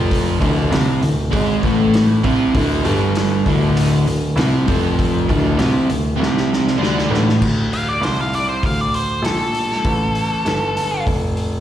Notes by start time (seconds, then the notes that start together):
Already playing: F1 F2 F3
0.11 kick, open hi-hat
0.40 D1 D2 D3, kick, open hi-hat
0.72 C2 C3 C4, snare, open hi-hat
1.01 D1 D2, open hi-hat
1.30 G#1 G#2 G#3, kick, open hi-hat
1.62 A1 A2 A3, kick, open hi-hat
1.94 snare, open hi-hat
2.23 C2 C3 C4, kick, open hi-hat
2.54 D1 D2 D3, kick, open hi-hat
2.84 G1 G2 G3, open hi-hat
3.15 snare, open hi-hat
3.46 D1 D2 D3, kick, open hi-hat
3.77 open hi-hat
4.07 D1 D2, open hi-hat
4.36 C2 C3 C4, snare, open hi-hat
4.66 F1 F2 F3, kick, open hi-hat
4.99 kick, open hi-hat
5.29 D1 D2 D3, kick, open hi-hat
5.58 C2 C3 C4, snare, open hi-hat
5.87 D1 D2, open hi-hat
6.16 C2 C3 C4
6.23 snare
6.37 snare
6.53 snare
6.67 snare
6.78 D2 D3 D4
6.83 snare
6.98 snare
7.09 A1 A2 A3
7.14 snare
7.29 snare
7.42 D2, kick, crash
7.73 F5, open hi-hat
7.89 D5
8.01 C2 C5, snare, open hi-hat
8.21 F5
8.33 D5, open hi-hat
8.49 C5
8.63 D2 F5, kick, open hi-hat
8.81 D5
8.94 C5, open hi-hat
9.22 A#1 A4, open hi-hat
9.26 snare
9.55 open hi-hat
9.72 snare
9.85 A1, kick, open hi-hat
10.15 open hi-hat
10.45 G1, snare, open hi-hat
10.77 open hi-hat
11.06 F1, kick, open hi-hat
11.37 open hi-hat